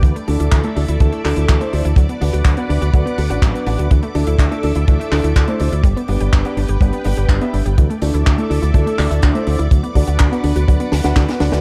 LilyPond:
<<
  \new Staff \with { instrumentName = "String machine" } { \time 4/4 \key d \mixolydian \tempo 4 = 124 << { <d'' d'''>1~ | <d'' d'''>1~ | <d'' d'''>1~ | <d'' d'''>1 |
<d'' d'''>1~ | <d'' d'''>1 | } \\ { <a' e''>1 | <b' fis''>1 | <a' e''>1 | <b' g''>1 |
<a' e''>1 | <b' fis''>1 | } >> }
  \new Staff \with { instrumentName = "Grand piano" } { \time 4/4 \key d \mixolydian r8 <a d' e' a'>8. <a d' e' a'>8 r16 <a d' e' a'>8 <a d' e' a'>8. <a d' e' c''>8 r16 | r8 <d' fis' b' d''>8. <d' fis' b' d''>8 r16 <d' fis' b' d''>8 r16 <d' fis' b' fis''>8. <d' fis' b' d''>8 | r8 <a d' e' a'>8. <a d' e' a'>8 r16 <a d' e' a'>8 <a d' e' a'>8. <a d' e' c''>8 r16 | r8 <b d' g' b'>8. <b d' g' b'>8 r16 <b d' g' b'>8 <b d' g' b'>8. <b d' g' e''>8 r16 |
r8 <a d' e' a'>8. <a d' e' a'>8 r16 <a d' e' a'>8 <a d' e' a'>8. <a d' e' c''>8 r16 | r8 <d' fis' b' d''>8. <d' fis' b' d''>8 r16 <d' fis' b' d''>8 r16 <d' fis' b' fis''>8. <d' fis' b' d''>8 | }
  \new Staff \with { instrumentName = "Synth arpeggio sound" } { \time 4/4 \key d \mixolydian e16 a16 d'16 e'16 e16 a16 d'16 e'16 e16 a16 d'16 e'16 e16 a16 d'16 e'16 | fis16 b16 d'16 fis'16 fis16 b16 d'16 fis'16 fis16 b16 d'16 fis'16 fis16 b16 d'16 fis'16 | e16 a16 d'16 e'16 d'16 a16 d'16 e'16 e16 a16 d'16 e'16 d'16 a16 d'16 e'16 | g16 b16 d'16 g'16 d'16 b16 d'16 g'16 g16 b16 d'16 g'16 d'16 b16 d'16 g'16 |
e16 a16 d'16 e'16 d'16 a16 d'16 e'16 e16 a16 d'16 e'16 d'16 a16 d'16 e'16 | fis16 b16 d'16 fis'16 d'16 b16 d'16 fis'16 fis16 b16 d'16 fis'16 d'16 b16 d'16 fis'16 | }
  \new Staff \with { instrumentName = "Fingered electric bass" } { \clef bass \time 4/4 \key d \mixolydian d,16 r16 d,16 d,16 d,16 r16 d,16 d,16 d,16 r16 d,16 d,16 d,16 r16 d,16 d,16 | d,16 r16 d,16 d,16 d,16 r16 d,16 d,16 d,16 r16 d,16 a,,16 a,,16 r16 a,,16 d,16 | d,16 r16 d,16 d,16 d,16 r16 d,16 d,16 d,16 r16 d,16 d,16 d,16 r16 d,16 d,16 | g,,16 r16 g,,16 g,,16 g,,16 r16 g,,16 g,,16 g,,16 r16 g,,16 g,,16 g,,16 r16 g,,16 g,,16 |
d,16 r16 d,16 d,16 d,16 r16 d,16 d,16 d,16 r16 d,16 d,16 d,16 r16 d,16 d,16 | d,16 r16 d,16 d,16 d,16 r16 d,16 d,16 d,16 r16 d,16 d,16 d,16 r16 d,16 d,16 | }
  \new DrumStaff \with { instrumentName = "Drums" } \drummode { \time 4/4 <hh bd>16 hh16 hho16 hh16 <hc hh bd>16 hh16 hho16 hh16 <hh bd>16 hh16 <hc hho>16 hh16 <hc hh bd>16 hh16 hho16 hh16 | <hh bd>16 hh16 hho16 hh16 <hc hh bd>16 hh16 hho16 hh16 <hh bd>16 hh16 hho16 hh16 <hc hh bd>16 hh16 hho16 hh16 | <hh bd>16 hh16 hho16 hh16 <hc hh bd>16 hh16 hho16 hh16 <hh bd>16 hh16 <hc hho>16 hh16 <hc hh bd>16 hh16 hho16 hh16 | <hh bd>16 hh16 hho16 hh16 <hc hh bd>16 hh16 hho16 hh16 <hh bd>16 hh16 hho16 hh16 <hc hh bd>16 hh16 hho16 hh16 |
<hh bd>16 hh16 hho16 hh16 <hc hh bd>16 hh16 hho16 hh16 <hh bd>16 hh16 <hc hho>16 hh16 <hc hh bd>16 hh16 hho16 hh16 | <hh bd>16 hh16 <hho bd>16 hh16 <hc hh bd>16 hh16 hho16 hh16 <hh bd>16 hh16 <hho sn>16 <hh sn>16 <hc hh bd sn>16 <hh sn>16 <hho sn>16 <hh sn>16 | }
>>